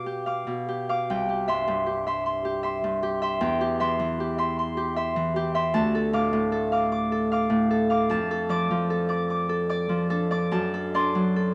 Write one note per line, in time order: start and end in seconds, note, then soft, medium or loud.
0.00 0.46 B2 soft
0.00 0.25 F5 soft
0.00 1.09 G5 medium
0.00 0.26 D6 medium
0.06 0.67 G4 medium
0.26 0.88 F5 medium
0.26 0.88 D6 medium
0.47 1.11 B2 soft
0.69 1.28 G4 medium
0.89 1.12 F5 medium
0.89 1.12 D6 medium
1.10 3.46 C2 medium
1.10 3.39 G5 medium
1.29 1.85 G4 medium
1.48 1.66 G2 medium
1.48 2.06 E5 medium
1.48 2.06 C6 medium
1.68 2.83 G2 medium
1.86 2.44 G4 medium
2.07 2.62 E5 medium
2.07 2.25 C6 medium
2.26 2.63 C6 medium
2.45 3.02 G4 medium
2.63 3.21 E5 medium
2.63 3.21 C6 medium
2.84 3.45 G2 medium
3.03 3.60 G4 medium
3.22 3.79 E5 medium
3.22 3.79 C6 medium
3.41 5.79 E2 medium
3.41 5.79 G5 medium
3.61 4.19 G4 medium
3.80 3.98 E3 medium
3.80 4.37 E5 medium
3.80 4.37 C6 medium
4.00 5.15 E3 medium
4.20 4.76 G4 medium
4.38 4.96 E5 medium
4.38 4.58 C6 medium
4.59 4.96 C6 medium
4.77 5.35 G4 medium
4.96 5.54 E5 medium
4.96 5.54 C6 medium
5.16 5.79 E3 medium
5.36 5.79 G4 medium
5.55 5.79 E5 medium
5.55 5.79 C6 medium
5.74 8.15 D2 medium
5.74 8.09 A5 medium
5.95 6.51 A4 medium
6.13 6.32 A2 medium
6.13 6.71 F5 medium
6.13 6.71 D6 medium
6.33 7.49 A2 medium
6.52 7.11 A4 medium
6.72 7.30 F5 medium
6.72 6.91 D6 medium
6.92 7.31 D6 medium
7.12 7.69 A4 medium
7.32 7.89 F5 medium
7.32 7.89 D6 medium
7.50 8.15 A2 medium
7.71 8.30 A4 medium
7.90 10.54 F5 medium
7.90 8.49 D6 medium
8.10 10.54 F2 medium
8.10 10.51 A5 medium
8.31 8.89 A4 medium
8.49 8.69 F3 medium
8.49 9.08 D5 medium
8.49 9.09 D6 loud
8.71 9.88 F3 medium
8.90 9.48 A4 medium
9.09 9.69 D5 medium
9.09 9.29 D6 medium
9.30 9.68 D6 medium
9.49 10.09 A4 medium
9.69 10.30 D5 medium
9.69 10.31 D6 medium
9.89 10.55 F3 medium
10.10 10.93 D4 medium
10.10 10.73 A4 medium
10.31 10.93 D5 medium
10.31 11.54 D6 medium
10.51 11.54 F#2 medium
10.51 11.54 A5 medium
10.74 11.35 A4 medium
10.94 11.54 D4 medium
10.94 11.54 D5 medium
10.94 11.54 C6 medium
11.15 11.54 F#3 medium
11.36 11.54 A4 medium